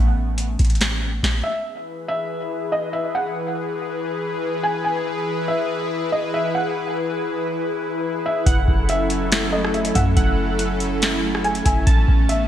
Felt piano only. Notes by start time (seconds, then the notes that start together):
1.44 E5
2.08 E5
2.72 D#5
2.93 E5
3.15 F#5
4.63 G#5
4.84 G#5
5.48 E5
6.12 D#5
6.34 E5
6.55 F#5
8.26 E5
8.89 E5
9.52 D#5
9.74 E5
9.96 F#5
11.44 G#5
11.65 G#5
12.29 E5